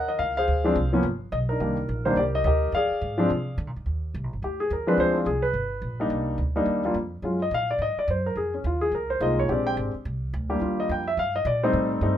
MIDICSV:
0, 0, Header, 1, 4, 480
1, 0, Start_track
1, 0, Key_signature, -3, "major"
1, 0, Tempo, 281558
1, 811, Time_signature, 4, 2, 24, 8
1, 20756, End_track
2, 0, Start_track
2, 0, Title_t, "Grand piano"
2, 0, Program_c, 0, 0
2, 0, Note_on_c, 0, 70, 69
2, 144, Note_on_c, 0, 75, 85
2, 321, Note_on_c, 0, 77, 90
2, 339, Note_off_c, 0, 75, 0
2, 570, Note_off_c, 0, 70, 0
2, 609, Note_off_c, 0, 77, 0
2, 635, Note_on_c, 0, 77, 98
2, 652, Note_on_c, 0, 72, 62
2, 658, Note_on_c, 0, 68, 56
2, 1098, Note_on_c, 0, 53, 72
2, 1099, Note_on_c, 0, 56, 68
2, 1116, Note_on_c, 0, 62, 86
2, 1118, Note_on_c, 0, 60, 67
2, 1272, Note_off_c, 0, 53, 0
2, 1272, Note_off_c, 0, 56, 0
2, 1281, Note_off_c, 0, 62, 0
2, 1282, Note_off_c, 0, 60, 0
2, 1521, Note_off_c, 0, 77, 0
2, 1530, Note_off_c, 0, 72, 0
2, 1533, Note_off_c, 0, 68, 0
2, 1581, Note_on_c, 0, 53, 67
2, 1586, Note_on_c, 0, 58, 66
2, 1595, Note_on_c, 0, 59, 67
2, 1598, Note_on_c, 0, 61, 82
2, 1754, Note_off_c, 0, 53, 0
2, 1756, Note_off_c, 0, 58, 0
2, 1760, Note_off_c, 0, 59, 0
2, 1762, Note_off_c, 0, 61, 0
2, 2253, Note_on_c, 0, 75, 81
2, 2338, Note_off_c, 0, 75, 0
2, 2539, Note_on_c, 0, 70, 77
2, 2571, Note_on_c, 0, 62, 52
2, 2579, Note_on_c, 0, 63, 52
2, 2730, Note_off_c, 0, 62, 0
2, 2732, Note_on_c, 0, 51, 55
2, 2747, Note_on_c, 0, 55, 53
2, 2748, Note_on_c, 0, 58, 57
2, 2756, Note_on_c, 0, 62, 60
2, 2992, Note_off_c, 0, 51, 0
2, 2999, Note_off_c, 0, 55, 0
2, 3000, Note_off_c, 0, 58, 0
2, 3004, Note_off_c, 0, 62, 0
2, 3455, Note_off_c, 0, 63, 0
2, 3500, Note_on_c, 0, 72, 84
2, 3506, Note_on_c, 0, 55, 63
2, 3512, Note_on_c, 0, 51, 72
2, 3517, Note_on_c, 0, 58, 68
2, 3526, Note_on_c, 0, 62, 78
2, 3530, Note_off_c, 0, 70, 0
2, 3677, Note_off_c, 0, 55, 0
2, 3679, Note_off_c, 0, 51, 0
2, 3682, Note_off_c, 0, 58, 0
2, 3687, Note_off_c, 0, 62, 0
2, 3699, Note_off_c, 0, 72, 0
2, 3703, Note_on_c, 0, 74, 81
2, 3740, Note_on_c, 0, 67, 65
2, 3744, Note_on_c, 0, 70, 59
2, 3788, Note_off_c, 0, 74, 0
2, 4006, Note_on_c, 0, 75, 92
2, 4158, Note_off_c, 0, 75, 0
2, 4181, Note_off_c, 0, 70, 0
2, 4184, Note_on_c, 0, 75, 87
2, 4189, Note_off_c, 0, 67, 0
2, 4207, Note_on_c, 0, 70, 68
2, 4215, Note_on_c, 0, 67, 68
2, 4626, Note_off_c, 0, 75, 0
2, 4638, Note_off_c, 0, 70, 0
2, 4642, Note_off_c, 0, 67, 0
2, 4681, Note_on_c, 0, 77, 96
2, 4699, Note_on_c, 0, 74, 69
2, 4706, Note_on_c, 0, 68, 62
2, 5416, Note_on_c, 0, 53, 78
2, 5433, Note_on_c, 0, 56, 68
2, 5436, Note_on_c, 0, 60, 72
2, 5440, Note_on_c, 0, 62, 84
2, 5592, Note_off_c, 0, 53, 0
2, 5601, Note_off_c, 0, 56, 0
2, 5602, Note_off_c, 0, 60, 0
2, 5604, Note_off_c, 0, 62, 0
2, 6040, Note_off_c, 0, 77, 0
2, 6049, Note_off_c, 0, 74, 0
2, 6053, Note_off_c, 0, 68, 0
2, 7572, Note_on_c, 0, 67, 69
2, 7834, Note_off_c, 0, 67, 0
2, 7845, Note_on_c, 0, 68, 78
2, 8022, Note_off_c, 0, 68, 0
2, 8058, Note_on_c, 0, 70, 71
2, 8299, Note_on_c, 0, 56, 70
2, 8307, Note_on_c, 0, 53, 75
2, 8315, Note_on_c, 0, 60, 66
2, 8318, Note_off_c, 0, 70, 0
2, 8321, Note_on_c, 0, 62, 86
2, 8322, Note_on_c, 0, 71, 79
2, 8500, Note_off_c, 0, 71, 0
2, 8522, Note_on_c, 0, 72, 88
2, 8738, Note_on_c, 0, 64, 46
2, 8766, Note_off_c, 0, 64, 0
2, 8790, Note_off_c, 0, 72, 0
2, 8814, Note_on_c, 0, 65, 64
2, 8936, Note_off_c, 0, 56, 0
2, 8940, Note_off_c, 0, 53, 0
2, 8944, Note_off_c, 0, 60, 0
2, 8947, Note_off_c, 0, 62, 0
2, 8974, Note_on_c, 0, 68, 73
2, 8987, Note_off_c, 0, 65, 0
2, 9246, Note_on_c, 0, 71, 82
2, 9255, Note_off_c, 0, 68, 0
2, 10227, Note_on_c, 0, 55, 66
2, 10229, Note_on_c, 0, 58, 59
2, 10241, Note_on_c, 0, 62, 62
2, 10244, Note_on_c, 0, 63, 80
2, 10341, Note_off_c, 0, 71, 0
2, 10860, Note_off_c, 0, 55, 0
2, 10862, Note_off_c, 0, 58, 0
2, 10868, Note_off_c, 0, 62, 0
2, 10869, Note_off_c, 0, 63, 0
2, 11179, Note_on_c, 0, 55, 74
2, 11182, Note_on_c, 0, 58, 67
2, 11187, Note_on_c, 0, 62, 68
2, 11196, Note_on_c, 0, 63, 80
2, 11634, Note_off_c, 0, 55, 0
2, 11636, Note_off_c, 0, 58, 0
2, 11638, Note_off_c, 0, 62, 0
2, 11643, Note_off_c, 0, 63, 0
2, 11674, Note_on_c, 0, 55, 71
2, 11677, Note_on_c, 0, 58, 66
2, 11683, Note_on_c, 0, 62, 64
2, 11693, Note_on_c, 0, 65, 74
2, 11843, Note_off_c, 0, 55, 0
2, 11845, Note_off_c, 0, 58, 0
2, 11848, Note_off_c, 0, 62, 0
2, 11853, Note_off_c, 0, 65, 0
2, 12328, Note_on_c, 0, 54, 53
2, 12334, Note_on_c, 0, 56, 53
2, 12337, Note_on_c, 0, 61, 52
2, 12355, Note_on_c, 0, 65, 60
2, 12593, Note_off_c, 0, 54, 0
2, 12596, Note_off_c, 0, 56, 0
2, 12597, Note_off_c, 0, 61, 0
2, 12606, Note_off_c, 0, 65, 0
2, 12654, Note_on_c, 0, 75, 86
2, 12827, Note_off_c, 0, 75, 0
2, 12861, Note_on_c, 0, 77, 92
2, 13120, Note_off_c, 0, 77, 0
2, 13138, Note_on_c, 0, 74, 85
2, 13309, Note_off_c, 0, 74, 0
2, 13328, Note_on_c, 0, 75, 87
2, 13593, Note_off_c, 0, 75, 0
2, 13617, Note_on_c, 0, 74, 81
2, 13788, Note_off_c, 0, 74, 0
2, 13817, Note_on_c, 0, 72, 70
2, 14078, Note_off_c, 0, 72, 0
2, 14088, Note_on_c, 0, 70, 75
2, 14264, Note_off_c, 0, 70, 0
2, 14271, Note_on_c, 0, 68, 71
2, 14544, Note_off_c, 0, 68, 0
2, 14563, Note_on_c, 0, 61, 56
2, 14741, Note_off_c, 0, 61, 0
2, 14771, Note_on_c, 0, 65, 69
2, 15025, Note_on_c, 0, 68, 83
2, 15034, Note_off_c, 0, 65, 0
2, 15212, Note_off_c, 0, 68, 0
2, 15252, Note_on_c, 0, 70, 72
2, 15515, Note_off_c, 0, 70, 0
2, 15516, Note_on_c, 0, 72, 78
2, 15697, Note_off_c, 0, 72, 0
2, 15698, Note_on_c, 0, 56, 66
2, 15703, Note_on_c, 0, 58, 53
2, 15703, Note_on_c, 0, 63, 57
2, 15709, Note_on_c, 0, 65, 67
2, 15725, Note_on_c, 0, 75, 87
2, 15991, Note_off_c, 0, 75, 0
2, 16015, Note_on_c, 0, 73, 82
2, 16148, Note_off_c, 0, 56, 0
2, 16174, Note_on_c, 0, 56, 61
2, 16179, Note_on_c, 0, 60, 56
2, 16180, Note_off_c, 0, 58, 0
2, 16180, Note_off_c, 0, 63, 0
2, 16183, Note_off_c, 0, 65, 0
2, 16183, Note_on_c, 0, 67, 68
2, 16184, Note_on_c, 0, 62, 58
2, 16187, Note_off_c, 0, 73, 0
2, 16237, Note_on_c, 0, 74, 74
2, 16479, Note_on_c, 0, 79, 97
2, 16487, Note_off_c, 0, 74, 0
2, 16590, Note_off_c, 0, 79, 0
2, 16886, Note_off_c, 0, 56, 0
2, 16889, Note_off_c, 0, 60, 0
2, 16890, Note_off_c, 0, 67, 0
2, 16891, Note_off_c, 0, 62, 0
2, 17892, Note_on_c, 0, 55, 65
2, 17895, Note_on_c, 0, 58, 59
2, 17896, Note_on_c, 0, 62, 55
2, 17898, Note_on_c, 0, 67, 71
2, 18049, Note_off_c, 0, 55, 0
2, 18057, Note_off_c, 0, 58, 0
2, 18058, Note_off_c, 0, 62, 0
2, 18075, Note_on_c, 0, 55, 56
2, 18082, Note_on_c, 0, 58, 49
2, 18083, Note_on_c, 0, 62, 51
2, 18092, Note_on_c, 0, 65, 61
2, 18408, Note_on_c, 0, 75, 83
2, 18535, Note_off_c, 0, 67, 0
2, 18583, Note_off_c, 0, 75, 0
2, 18609, Note_on_c, 0, 79, 86
2, 18796, Note_off_c, 0, 55, 0
2, 18799, Note_off_c, 0, 58, 0
2, 18800, Note_off_c, 0, 62, 0
2, 18804, Note_off_c, 0, 65, 0
2, 18872, Note_off_c, 0, 79, 0
2, 18882, Note_on_c, 0, 76, 86
2, 19059, Note_off_c, 0, 76, 0
2, 19078, Note_on_c, 0, 77, 93
2, 19346, Note_off_c, 0, 77, 0
2, 19360, Note_on_c, 0, 75, 91
2, 19538, Note_off_c, 0, 75, 0
2, 19550, Note_on_c, 0, 74, 81
2, 19822, Note_off_c, 0, 74, 0
2, 19833, Note_on_c, 0, 55, 74
2, 19835, Note_on_c, 0, 72, 80
2, 19837, Note_on_c, 0, 57, 70
2, 19847, Note_on_c, 0, 60, 68
2, 19851, Note_on_c, 0, 63, 84
2, 20276, Note_off_c, 0, 72, 0
2, 20461, Note_off_c, 0, 55, 0
2, 20463, Note_off_c, 0, 57, 0
2, 20468, Note_off_c, 0, 60, 0
2, 20470, Note_off_c, 0, 63, 0
2, 20498, Note_on_c, 0, 55, 65
2, 20503, Note_on_c, 0, 57, 64
2, 20506, Note_on_c, 0, 63, 76
2, 20510, Note_on_c, 0, 60, 61
2, 20756, Note_off_c, 0, 55, 0
2, 20756, Note_off_c, 0, 57, 0
2, 20756, Note_off_c, 0, 60, 0
2, 20756, Note_off_c, 0, 63, 0
2, 20756, End_track
3, 0, Start_track
3, 0, Title_t, "Upright bass"
3, 0, Program_c, 1, 32
3, 0, Note_on_c, 1, 39, 75
3, 314, Note_off_c, 1, 39, 0
3, 328, Note_on_c, 1, 37, 80
3, 795, Note_off_c, 1, 37, 0
3, 812, Note_on_c, 1, 38, 76
3, 1278, Note_off_c, 1, 38, 0
3, 1286, Note_on_c, 1, 36, 87
3, 1743, Note_off_c, 1, 36, 0
3, 1754, Note_on_c, 1, 31, 85
3, 2229, Note_off_c, 1, 31, 0
3, 2251, Note_on_c, 1, 35, 86
3, 2718, Note_off_c, 1, 35, 0
3, 2730, Note_on_c, 1, 36, 75
3, 3197, Note_off_c, 1, 36, 0
3, 3215, Note_on_c, 1, 34, 88
3, 3672, Note_off_c, 1, 34, 0
3, 3682, Note_on_c, 1, 36, 79
3, 4149, Note_off_c, 1, 36, 0
3, 4160, Note_on_c, 1, 38, 91
3, 4632, Note_off_c, 1, 38, 0
3, 4640, Note_on_c, 1, 41, 83
3, 4914, Note_off_c, 1, 41, 0
3, 5139, Note_on_c, 1, 44, 81
3, 5603, Note_off_c, 1, 44, 0
3, 5627, Note_on_c, 1, 48, 77
3, 6087, Note_off_c, 1, 48, 0
3, 6098, Note_on_c, 1, 50, 89
3, 6255, Note_off_c, 1, 50, 0
3, 6255, Note_on_c, 1, 46, 50
3, 6405, Note_off_c, 1, 46, 0
3, 6416, Note_on_c, 1, 44, 60
3, 6565, Note_off_c, 1, 44, 0
3, 6576, Note_on_c, 1, 39, 70
3, 7042, Note_off_c, 1, 39, 0
3, 7065, Note_on_c, 1, 36, 83
3, 7218, Note_off_c, 1, 36, 0
3, 7218, Note_on_c, 1, 34, 55
3, 7377, Note_off_c, 1, 34, 0
3, 7384, Note_on_c, 1, 31, 56
3, 7529, Note_off_c, 1, 31, 0
3, 7539, Note_on_c, 1, 38, 76
3, 8004, Note_off_c, 1, 38, 0
3, 8020, Note_on_c, 1, 39, 86
3, 8469, Note_off_c, 1, 39, 0
3, 8479, Note_on_c, 1, 38, 70
3, 8954, Note_off_c, 1, 38, 0
3, 8968, Note_on_c, 1, 36, 82
3, 9426, Note_off_c, 1, 36, 0
3, 9437, Note_on_c, 1, 31, 74
3, 9905, Note_off_c, 1, 31, 0
3, 9915, Note_on_c, 1, 34, 80
3, 10385, Note_off_c, 1, 34, 0
3, 10395, Note_on_c, 1, 36, 82
3, 10863, Note_off_c, 1, 36, 0
3, 10873, Note_on_c, 1, 38, 78
3, 11340, Note_off_c, 1, 38, 0
3, 11350, Note_on_c, 1, 39, 80
3, 11829, Note_off_c, 1, 39, 0
3, 11837, Note_on_c, 1, 41, 84
3, 12304, Note_off_c, 1, 41, 0
3, 12314, Note_on_c, 1, 42, 73
3, 12791, Note_off_c, 1, 42, 0
3, 12803, Note_on_c, 1, 46, 82
3, 13262, Note_off_c, 1, 46, 0
3, 13272, Note_on_c, 1, 44, 82
3, 13552, Note_off_c, 1, 44, 0
3, 13768, Note_on_c, 1, 42, 92
3, 14233, Note_off_c, 1, 42, 0
3, 14243, Note_on_c, 1, 41, 70
3, 14716, Note_off_c, 1, 41, 0
3, 14732, Note_on_c, 1, 39, 83
3, 15191, Note_off_c, 1, 39, 0
3, 15201, Note_on_c, 1, 37, 75
3, 15675, Note_off_c, 1, 37, 0
3, 15693, Note_on_c, 1, 36, 93
3, 16161, Note_off_c, 1, 36, 0
3, 16174, Note_on_c, 1, 34, 80
3, 16641, Note_off_c, 1, 34, 0
3, 16653, Note_on_c, 1, 32, 88
3, 16923, Note_off_c, 1, 32, 0
3, 17137, Note_on_c, 1, 36, 80
3, 17603, Note_off_c, 1, 36, 0
3, 17620, Note_on_c, 1, 38, 93
3, 18084, Note_off_c, 1, 38, 0
3, 18096, Note_on_c, 1, 39, 74
3, 18562, Note_off_c, 1, 39, 0
3, 18572, Note_on_c, 1, 41, 86
3, 19039, Note_off_c, 1, 41, 0
3, 19046, Note_on_c, 1, 43, 79
3, 19509, Note_off_c, 1, 43, 0
3, 19519, Note_on_c, 1, 46, 95
3, 19992, Note_off_c, 1, 46, 0
3, 20001, Note_on_c, 1, 45, 81
3, 20468, Note_off_c, 1, 45, 0
3, 20478, Note_on_c, 1, 43, 84
3, 20753, Note_off_c, 1, 43, 0
3, 20756, End_track
4, 0, Start_track
4, 0, Title_t, "Muted upright bass strokes"
4, 4955, Note_on_c, 9, 29, 38
4, 5125, Note_off_c, 9, 29, 0
4, 13582, Note_on_c, 9, 29, 33
4, 13753, Note_off_c, 9, 29, 0
4, 16953, Note_on_c, 9, 29, 36
4, 17123, Note_off_c, 9, 29, 0
4, 20756, End_track
0, 0, End_of_file